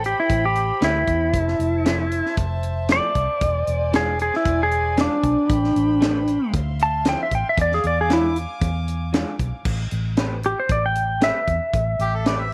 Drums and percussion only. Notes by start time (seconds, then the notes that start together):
0.04 closed hi-hat
0.30 kick, closed hi-hat
0.55 closed hi-hat
0.82 snare, closed hi-hat
1.08 kick, closed hi-hat
1.34 kick, closed hi-hat
1.48 snare
1.60 closed hi-hat
1.86 snare, closed hi-hat
2.11 closed hi-hat
2.26 snare
2.37 kick, closed hi-hat
2.63 closed hi-hat
2.89 snare, closed hi-hat
3.15 kick, closed hi-hat
3.41 kick, closed hi-hat
3.67 closed hi-hat
3.93 snare, closed hi-hat
4.19 closed hi-hat
4.34 snare
4.45 kick, closed hi-hat
4.71 closed hi-hat
4.97 snare, closed hi-hat
5.23 kick, closed hi-hat
5.50 kick, closed hi-hat
5.64 snare
5.76 closed hi-hat
6.02 snare, closed hi-hat
6.27 closed hi-hat
6.54 kick, closed hi-hat
6.79 closed hi-hat
7.05 snare, closed hi-hat
7.31 kick, closed hi-hat
7.57 kick, closed hi-hat
7.72 snare
7.84 closed hi-hat
8.10 snare, closed hi-hat
8.36 closed hi-hat
8.62 kick, closed hi-hat
8.88 closed hi-hat
9.14 snare, closed hi-hat
9.39 kick, closed hi-hat
9.65 kick, crash
9.91 closed hi-hat
10.17 snare, closed hi-hat
10.43 closed hi-hat
10.69 kick, closed hi-hat
10.95 closed hi-hat
11.21 snare, closed hi-hat
11.47 kick, closed hi-hat
11.73 kick, closed hi-hat
11.99 closed hi-hat
12.26 snare, closed hi-hat